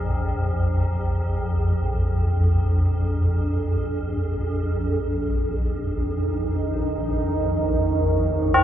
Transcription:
Already playing: A#1 F2 A#4
4.82 A#1 F2 D#4
6.33 A#4
7.32 C#6
8.54 C4

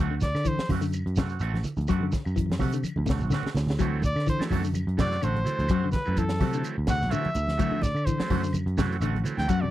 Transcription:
0.00 D2 A3 C4 F#4
0.11 D3
0.21 D5, kick, snare, closed hi-hat, high conga, shekere
0.35 D3, muted clean electric guitar stroke, snare, claves, shekere
0.45 E3 C5, muted clean electric guitar stroke, kick, closed hi-hat, shekere
0.58 snare, high conga
0.69 F#2 F#3 A3 C4 F#4, kick, open hi-hat, high conga, low conga, claves, shekere
0.81 D3, muted clean electric guitar stroke, shekere
0.93 closed hi-hat, claves, shekere
1.06 F#2, muted clean electric guitar stroke, closed hi-hat
1.16 C3 A3 C4 F#4, kick, snare, closed hi-hat, high conga, shekere
1.29 C4 F#4, closed hi-hat, shekere
1.40 A1 A3 C4 F#4, closed hi-hat, claves, shekere
1.54 snare, closed hi-hat, high conga
1.64 muted clean electric guitar stroke, closed hi-hat, low conga, shekere
1.77 D2, muted clean electric guitar stroke, high conga, shekere
1.81 closed hi-hat
1.88 F#2 F#3 A3 C4 F#4, kick, closed hi-hat, claves, shekere
2.01 D3, high conga
2.11 muted clean electric guitar stroke, muted picked electric bass stroke, kick, snare, closed hi-hat, high conga, shekere
2.25 F#2, muted clean electric guitar stroke, claves, shekere
2.36 E3, muted clean electric guitar stroke, kick, closed hi-hat, shekere
2.50 muted clean electric guitar stroke, snare, closed hi-hat, high conga
2.59 C3 F#3 A3 F#4, muted clean electric guitar stroke, kick, open hi-hat, high conga, low conga, claves, shekere
2.73 D3, muted clean electric guitar stroke, closed hi-hat, shekere
2.84 closed hi-hat, high conga, claves, shekere
2.96 D2, muted clean electric guitar stroke, high conga
3.06 C3 A3 C4 F#4, kick, snare, closed hi-hat, low conga, shekere
3.19 C2 F#4, low conga, shekere
3.24 C4
3.30 D3 A3 C4 F#4, snare, low conga, claves, shekere
3.43 muted picked electric bass stroke, snare, low conga
3.55 D2, muted clean electric guitar stroke, snare, low conga, shekere
3.67 muted clean electric guitar stroke, snare, low conga, shekere
3.78 D2 E3 F#3 A3 C4 F#4, muted clean electric guitar stroke, kick, closed hi-hat, claves, shekere
4.02 D5, muted clean electric guitar stroke, kick, closed hi-hat, high conga, shekere
4.16 D3, muted clean electric guitar stroke, snare, claves, shekere
4.27 E3 C5, muted clean electric guitar stroke, kick, closed hi-hat, shekere
4.38 E3 F#3 A3 D4, snare, high conga
4.51 F#2 F#3 A3 C4 F#4, kick, open hi-hat, high conga, low conga, claves, shekere
4.64 D3, muted clean electric guitar stroke, shekere
4.74 closed hi-hat, high conga, claves, shekere
4.87 F#2, muted clean electric guitar stroke, closed hi-hat
4.97 C3 E3 F#3 A3 C4 F#4 D5, kick, snare, closed hi-hat, high conga, shekere
5.11 C4 F#4, snare, closed hi-hat, shekere
5.21 A1 D3 A3 C4 F#4 C5, closed hi-hat, claves, shekere
5.35 closed hi-hat, high conga
5.44 E3 F#3 A3 C4, muted clean electric guitar stroke, closed hi-hat, low conga, shekere
5.59 D2, muted clean electric guitar stroke, closed hi-hat, high conga, shekere
5.69 F#2 F#3 A3 C4 F#4, kick, closed hi-hat, claves, shekere
5.84 D3
5.92 B4, muted picked electric bass stroke, kick, snare, closed hi-hat, high conga, shekere
6.05 F#2 E3 F#3 A3 C4, muted clean electric guitar stroke, claves, shekere
6.17 E3 A4, muted clean electric guitar stroke, kick, closed hi-hat, shekere
6.29 snare, closed hi-hat
6.39 C3 F#3 A3 C4 F#4, kick, open hi-hat, high conga, low conga, claves, shekere
6.51 D3 E3 F#3 A3 C4, closed hi-hat, shekere
6.64 closed hi-hat, claves, shekere
6.76 D2, muted clean electric guitar stroke
6.87 C3 A3 C4 F#4 F#5, kick, snare, closed hi-hat, high conga, shekere
6.99 C2 C4 F#4, snare, shekere
7.09 D3 E3 F#3 A3 C4 F#4 E5, closed hi-hat, shekere
7.13 claves
7.25 muted picked electric bass stroke, closed hi-hat, high conga
7.33 D2, muted clean electric guitar stroke, closed hi-hat, low conga, shekere
7.47 muted clean electric guitar stroke, snare, closed hi-hat, high conga, shekere
7.57 D2 E3 F#3 A3 C4 F#4, kick, closed hi-hat, claves, shekere
7.71 D3, high conga
7.82 D5, muted clean electric guitar stroke, kick, snare, closed hi-hat, high conga, shekere
7.95 D3, muted clean electric guitar stroke, claves, shekere
8.06 E3 C5, muted clean electric guitar stroke, kick, closed hi-hat, shekere
8.18 E3 F#3 A3 C4, snare, high conga
8.30 F#2 F#3 A3 F#4, kick, open hi-hat, high conga, low conga, claves, shekere
8.43 D3, muted clean electric guitar stroke, shekere
8.53 closed hi-hat, high conga, low conga, claves, shekere
8.66 F#2, muted clean electric guitar stroke, closed hi-hat
8.77 C3 E3 F#3 A3 C4 F#4, kick, snare, closed hi-hat, high conga, shekere
8.90 C4 F#4, closed hi-hat, shekere
9.01 A1 D3 A3 C4 F#4, closed hi-hat, claves, shekere
9.15 closed hi-hat, high conga
9.23 E3 F#3 A3 C4, muted clean electric guitar stroke, closed hi-hat, low conga, shekere
9.38 D2 G5, muted clean electric guitar stroke, snare, closed hi-hat, high conga, shekere
9.47 F#2 F#3 A3 C4 F#4 F#5, kick, closed hi-hat, claves, shekere
9.61 C3 D5, high conga

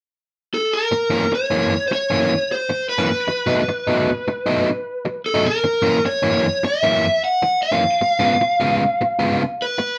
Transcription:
0.54 A4
0.73 A#4
0.91 muted overdriven electric guitar stroke
1.10 F#2 E3 A#3 C#4
1.32 C#5, muted overdriven electric guitar stroke
1.50 F#2 E3 A#3 C#4
1.88 C5, muted overdriven electric guitar stroke
1.93 C#5
2.10 F#2 E3 A#3 C#4
2.52 C5
2.69 muted overdriven electric guitar stroke
2.89 B4
2.98 F#2 E3 A#3 C#4
3.28 muted overdriven electric guitar stroke
3.46 B2 F#3 A3 D#4
3.68 muted overdriven electric guitar stroke
3.87 B2 F#3 A3 D#4
4.28 muted overdriven electric guitar stroke
4.46 B2 F#3 A3 D#4
5.05 muted overdriven electric guitar stroke
5.26 A4
5.34 B2 F#3 A3 D#4
5.47 A#4
5.64 muted overdriven electric guitar stroke
5.82 F#2 E3 A#3 C#4
6.05 C#5, muted overdriven electric guitar stroke
6.23 F#2 E3 A#3 C#4
6.63 E5, muted overdriven electric guitar stroke
6.83 F#2 E3 A#3 C#4
7.24 F#5
7.42 muted overdriven electric guitar stroke
7.63 F5
7.72 F#2 E3 A#3 C#4
8.01 muted overdriven electric guitar stroke
8.19 C#3 G#3 B3 F4
8.41 muted overdriven electric guitar stroke
8.60 C#3 G#3 B3 F4
9.01 muted overdriven electric guitar stroke
9.19 C#3 G#3 B3 F4
9.62 B4
9.78 muted overdriven electric guitar stroke

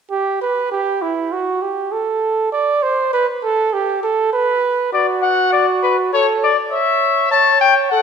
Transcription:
0.11 G4
0.41 B4
0.71 G4
1.02 E4
1.32 F#4
1.62 G4
1.92 A4
2.52 D5
2.83 C5
3.13 B4
3.43 A4
3.73 G4
4.03 A4
4.33 B4
4.93 F#4 D5
5.23 F#5
5.52 D5
5.83 B4
6.13 A4 C#5
6.43 D5
6.72 C#5 E5
7.31 C#5 A5
7.61 G5
7.91 A4 F#5

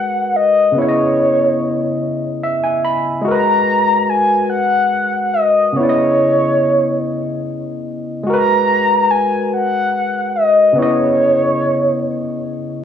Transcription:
Already playing: G#3 F#4 A#4 B4 F#5
0.36 D#5
0.72 C#3 B3
0.78 E4 C#5
0.89 D#5
2.43 E5
2.63 G#5
2.84 B5
3.21 G#3 F#4
3.26 A#4 A#5
3.31 B4
4.09 G#5
4.50 F#5
5.34 D#5
5.72 C#3 B3
5.76 E4 C#5
5.83 D5
5.89 D#5
8.23 G#3 F#4
8.27 A#4 A#5
8.33 B4
9.11 G#5
9.54 F#5
10.36 D#5
10.73 C#3 B3
10.78 E4 C#5
10.83 D#5

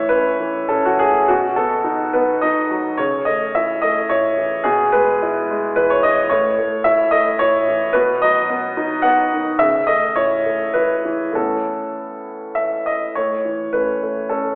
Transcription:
Already playing: A2 E3 C#5 E5
0.09 C#4 B4
0.40 E3
0.69 C#4 A4
0.85 F#4
0.99 A3 G#4
1.28 B2 F#4
1.56 B3 A4
1.84 D#4
2.13 B3 B4
2.41 D#4 D#5
2.71 F#3
2.97 C#3 C#5
3.25 A3 D#5
3.55 E4 E5
3.82 A3 D#5
4.09 E4 C#5
4.38 E3
4.64 B2 G#4
4.92 G#3 B4
5.22 E4
5.50 G#3
5.76 E4 B4
5.90 C#5
6.03 E3 D#5
6.29 A2 C#5
6.58 A3
6.84 E4 E5
7.11 A3 D#5
7.39 E4 C#5
7.68 E3
7.93 B2 B4
8.22 F#3 D#5
8.50 B3
8.77 D#4
9.02 B3 F#5
9.33 D#3
9.59 C#3 E5
9.87 A3 D#5
10.16 E4 C#5
10.46 A3
10.74 E4 B4
11.05 E3
11.32 A2 E3 B3 C#4 A4
12.55 E5
12.86 D#5
13.15 A2 C#5
13.45 E3
13.73 A3 C#4 B4
14.03 A3
14.29 A3 C#4 A4

